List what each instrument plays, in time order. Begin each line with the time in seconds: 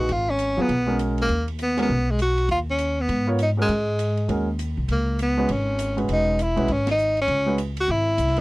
Already playing: tenor saxophone F#4
0.09 upright bass G#1, tenor saxophone F4, ride
0.30 tenor saxophone C#4
0.39 hi-hat pedal, ride
0.57 upright bass D#2, grand piano F#3 B3 F4 G#4
0.61 tenor saxophone B3
0.69 upright bass B1, ride
0.86 grand piano G#3 C#4 F#4 A#4
0.99 hi-hat pedal, ride
1.18 tenor saxophone A#3, ride
1.29 upright bass D#2, ride
1.48 ride
1.59 tenor saxophone B3, hi-hat pedal, ride
1.77 grand piano G#3 C#4 F#4 A#4, snare, ride
1.82 tenor saxophone B3
1.89 upright bass B1
2.11 tenor saxophone G#3
2.19 tenor saxophone F#4, hi-hat pedal, ride
2.38 ride
2.49 upright bass D#2, tenor saxophone F4, ride
2.70 tenor saxophone C#4
2.78 hi-hat pedal, ride
3.01 tenor saxophone B3
3.08 upright bass G#2, ride
3.27 grand piano B3 F4 A#4 C#5
3.39 tenor saxophone D#4, hi-hat pedal, ride
3.57 grand piano G#3 C#4 F#4 A#4
3.62 tenor saxophone G#3
3.69 upright bass G#2, ride
3.99 hi-hat pedal, ride
4.17 ride
4.28 upright bass D#2, grand piano G#3 C#4 F#4 A#4, ride
4.59 hi-hat pedal, ride
4.77 upright bass C2
4.88 upright bass C#2, tenor saxophone A#3, ride
5.19 tenor saxophone B3, hi-hat pedal, ride
5.37 grand piano G#3 C#4 F#4 B4
5.49 upright bass G#1, tenor saxophone C#4, ride
5.79 hi-hat pedal, ride
5.97 grand piano G#3 C#4 F#4 B4, ride
6.08 upright bass E1, ride
6.13 tenor saxophone D#4
6.39 tenor saxophone E4, hi-hat pedal, ride
6.56 upright bass B1, grand piano G#3 C#4 F#4 B4, ride
6.68 upright bass G#1, ride
6.72 tenor saxophone C#4
6.87 snare, ride
6.91 tenor saxophone D#4
6.98 hi-hat pedal
7.17 ride
7.21 tenor saxophone C#4
7.28 upright bass C#2, ride
7.46 grand piano G#3 C#4 F#4 B4
7.58 hi-hat pedal, ride
7.77 tenor saxophone F#4, ride
7.88 upright bass G#1, tenor saxophone E4
8.18 upright bass C2, hi-hat pedal, ride
8.28 snare
8.36 grand piano B3 E4 A#4, ride